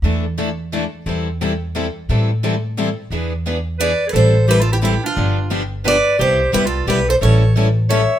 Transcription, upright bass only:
X:1
M:3/4
L:1/8
Q:"Swing" 1/4=176
K:Am
V:1 name="Upright bass" clef=bass
E,,6 | E,,6 | A,,6 | E,,6 |
A,,,6 | G,,,6 | C,,2 C,,2 B,,,2 | A,,,6 |]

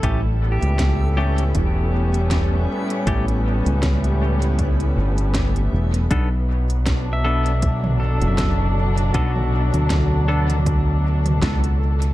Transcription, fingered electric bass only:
X:1
M:4/4
L:1/16
Q:"Swing 16ths" 1/4=79
K:Bm
V:1 name="Fingered electric bass" clef=bass
A,,,3 C,,4- C,, E,,,6 z2 | A,,,3 C,,6- C,, G,,,4 E,,,2 | B,,,8- B,,,3 F,,,4- F,,, | B,,,3 D,,8- D,, C,,4 |]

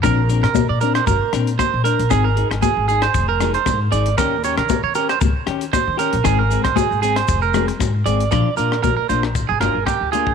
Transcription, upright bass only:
X:1
M:4/4
L:1/16
Q:"Swing 16ths" 1/4=116
K:Bbmix
V:1 name="Upright bass" clef=bass
B,,,3 B,,2 B,,3 G,,, z B,,2 z B,,2 B,,, | A,,,3 A,,, z A,,,3 F,,,4 A,,2 A,,,2 | E,,3 E,2 E,3 _D,, z E,2 z E,2 B,,, | A,,,3 A,,, z A,,,3 F,,,4 A,,2 A,,,2 |
B,,, z B,,2 B,,, z B,,,3 G,,, G,,, G,,, z D,,3 |]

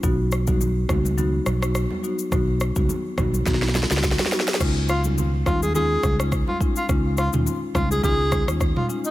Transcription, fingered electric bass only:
X:1
M:4/4
L:1/16
Q:"Swing 16ths" 1/4=105
K:Dbmix
V:1 name="Fingered electric bass" clef=bass
C,,6 D,,4 C,,3 z3 | C,,3 D,, z2 C,,2 C,,3 D,,2 z3 | D,,6 E,,4 D,,3 z3 | D,,3 E,, z2 D,,2 D,,3 E,,2 z3 |]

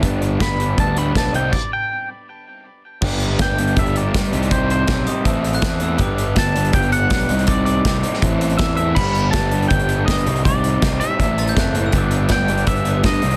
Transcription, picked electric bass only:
X:1
M:4/4
L:1/8
Q:1/4=161
K:G
V:1 name="Picked electric bass" clef=bass
G,,,2 G,,,2 D,,2 B,,, C,, | z8 | G,,,2 G,,,2 G,,,2 G,, C,,- | C,,2 B,,, z A,,,2 E,,2 |
G,,,2 G,,,2 G,,,2 B,,, C,,- | C,,2 C,, z A,,,2 E,,2 | G,,,2 G,,,2 G,,,2 G,,, C,,- | C,,2 C,, z A,,,2 F,,,2 |
G,,,2 G,,,2 G,,,2 G,, C,, |]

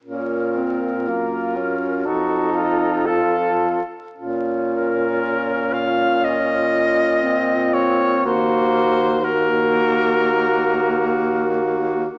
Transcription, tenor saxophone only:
X:1
M:4/4
L:1/8
Q:1/4=60
K:Bbm
V:1 name="Tenor saxophone"
D C B, D E2 F z | D6 C2 | B,2 B,6 |]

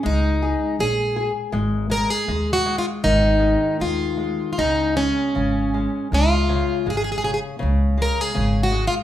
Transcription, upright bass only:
X:1
M:2/4
L:1/8
Q:1/4=80
K:Db
V:1 name="Upright bass" clef=bass
D,,2 B,,,2 | A,,,2 E,,2 | A,,,2 E,,2 | D,,2 A,,,2 |
D,,2 A,,,2 | D,,2 A,,,2 |]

